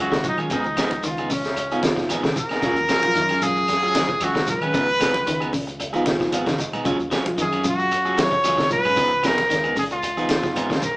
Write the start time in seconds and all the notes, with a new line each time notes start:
Already playing: C#2 F#3
0.00 C#4 F4 F#4 G#4
0.12 D#3 C#4 F4, muted clean electric guitar stroke, kick, snare, shekere
0.24 F#3 G#3 C#4 F4, muted clean electric guitar stroke, kick, closed hi-hat, low conga, shekere
0.28 D#4
0.38 D#3 C#4 F4 G#4, claves, shekere
0.50 C#2 C#3 F3 B3 D#4 G#4, kick, closed hi-hat, low conga, shekere
0.64 muted clean electric guitar stroke, high conga, shekere
0.77 F3 B3 D#4 G#4, kick, snare, closed hi-hat, claves, shekere
0.91 C#2, muted clean electric guitar stroke, closed hi-hat, high conga, shekere
1.03 C#2 D#3 F4, closed hi-hat, shekere
1.17 B3 D#4 G#4, high conga, claves, shekere
1.30 C#3 C#4, muted clean electric guitar stroke, open hi-hat, high conga, low conga, shekere
1.44 muted clean electric guitar stroke, snare, closed hi-hat, shekere
1.56 muted clean electric guitar stroke, closed hi-hat, claves, shekere
1.71 F3 B3 D#4 F4 G#4, muted clean electric guitar stroke, closed hi-hat, shekere
1.83 D#3, muted clean electric guitar stroke, kick, snare, closed hi-hat, high conga, shekere
1.97 F3, kick, snare, shekere
2.08 G#1 F3 B3 D#4 G#4, closed hi-hat, high conga, claves, shekere
2.23 C#3 D#3, muted clean electric guitar stroke, kick, snare, closed hi-hat, shekere
2.36 A#4, muted clean electric guitar stroke, kick, closed hi-hat, low conga, shekere
2.49 B3 D#4 G#4, muted fingered electric bass stroke, snare, claves, shekere
2.62 D#2 C#3 F#3 G#3 C#4 F4 G#4, kick, snare, closed hi-hat, low conga, shekere
2.76 muted clean electric guitar stroke, closed hi-hat, high conga, shekere
2.89 F3 F#3 F4 G#4, muted clean electric guitar stroke, kick, snare, closed hi-hat, claves, shekere
3.03 A#1 F#3 G#3 C#4 F4, muted clean electric guitar stroke, high conga, shekere
3.15 F#2 D#3, closed hi-hat, shekere
3.29 C#4 F4 G#4, closed hi-hat, high conga, claves, shekere
3.42 C#3 F#3 G#3 C#4 F4 G#4, muted clean electric guitar stroke, closed hi-hat, high conga, low conga, shekere
3.56 muted clean electric guitar stroke, shekere
3.68 muted clean electric guitar stroke, snare, closed hi-hat, high conga, claves, shekere
3.83 F#3 C#4 F4 G#4, shekere
3.95 D#3 F#3 G#3 C#4 F#4, muted clean electric guitar stroke, snare, closed hi-hat, high conga, shekere
4.09 F3, kick, closed hi-hat, shekere
4.20 C#2 F#3 C#4 F4 F#4 G#4, closed hi-hat, high conga, claves, shekere
4.35 D#3 C#4 F4, muted clean electric guitar stroke, kick, snare, shekere
4.47 F#3 G#3 C#4 F4 B4, muted clean electric guitar stroke, kick, closed hi-hat, low conga, shekere
4.61 D#3 C#4 F4 G#4, claves, shekere
4.74 C#2 C#3 F3 B3 D#4 G#4, kick, closed hi-hat, shekere
4.88 muted clean electric guitar stroke, shekere
5.00 F3 B3 D#4 G#4, kick, snare, closed hi-hat, claves, shekere
5.14 C#2, muted clean electric guitar stroke, closed hi-hat, high conga, shekere
5.26 C#2 D#3, closed hi-hat, shekere
5.40 B3 D#4 G#4, claves, shekere
5.53 C#3, muted clean electric guitar stroke, open hi-hat, high conga, low conga, shekere
5.67 muted clean electric guitar stroke, closed hi-hat, shekere
5.80 muted clean electric guitar stroke, closed hi-hat, claves, shekere
5.93 F3 B3 D#4 F4 G#4, closed hi-hat, high conga, shekere
6.05 D#3 G#5, muted clean electric guitar stroke, kick, snare, closed hi-hat, high conga, low conga, shekere
6.20 F3, kick, snare, shekere
6.32 G#1 F3 B3 G#4 F5, closed hi-hat, high conga, claves, shekere
6.46 C#3 D#3, muted clean electric guitar stroke, kick, snare, closed hi-hat, high conga, shekere
6.58 D#5, muted clean electric guitar stroke, kick, closed hi-hat, shekere
6.72 B3 D#4 G#4, muted fingered electric bass stroke, low conga, claves, shekere
6.85 D#2 C#3 F#3 G#3 C#4 F4 G#4, kick, closed hi-hat, low conga, shekere
6.99 muted clean electric guitar stroke, closed hi-hat, shekere
7.11 F3 F#3 C#4 F4 G#4, kick, snare, closed hi-hat, claves, shekere
7.25 A#1 F#3 G#3 C#4 F4, muted clean electric guitar stroke, high conga, shekere
7.38 F#2 D#3 G#4, closed hi-hat, shekere
7.52 C#4 F4 G#4, closed hi-hat, claves, shekere
7.64 C#3 F#3 G#3 C#4 F4, muted clean electric guitar stroke, closed hi-hat, high conga, low conga, shekere
7.69 F#4
7.79 muted clean electric guitar stroke, shekere
7.91 muted clean electric guitar stroke, closed hi-hat, claves, shekere
8.05 F#3 C#4 F4 G#4, shekere
8.18 D#3 F#3 G#3 C#4 F4 C#5, muted clean electric guitar stroke, snare, closed hi-hat, high conga, shekere
8.31 F3, kick, closed hi-hat, shekere
8.44 C#2 F#3 C#4 F4 G#4, closed hi-hat, high conga, claves, shekere
8.57 D#3 C#4 F4, muted clean electric guitar stroke, kick, snare, shekere
8.71 F#3 G#3 C#4 F4 B4, muted clean electric guitar stroke, kick, closed hi-hat, low conga, shekere
8.84 G#2 C#4 F4 G#4, claves, shekere
8.96 C#2 C#3 F3 B3 D#4 G#4, kick, closed hi-hat, shekere
9.11 muted clean electric guitar stroke, shekere
9.23 F3 B3 D#4 G#4 A#4, kick, snare, closed hi-hat, claves, shekere
9.37 C#2, muted clean electric guitar stroke, snare, closed hi-hat, high conga, shekere
9.49 C#2 D#3, snare, closed hi-hat, shekere
9.64 B3 D#4 G#4, claves, shekere
9.76 C#3 G#4, muted clean electric guitar stroke, open hi-hat, high conga, low conga, shekere
9.90 F4, muted clean electric guitar stroke, closed hi-hat, shekere
10.03 muted clean electric guitar stroke, closed hi-hat, claves, shekere
10.17 F3 B3 D#4 F4 G#4, closed hi-hat, high conga, shekere
10.29 D#3, muted clean electric guitar stroke, kick, snare, closed hi-hat, high conga, shekere
10.43 F3, kick, snare, shekere
10.55 G#1 F3 B3 D#4 G#4, closed hi-hat, high conga, claves, shekere
10.70 C#3 D#3, muted clean electric guitar stroke, kick, snare, closed hi-hat, shekere
10.82 A#4, muted clean electric guitar stroke, kick, closed hi-hat, low conga, shekere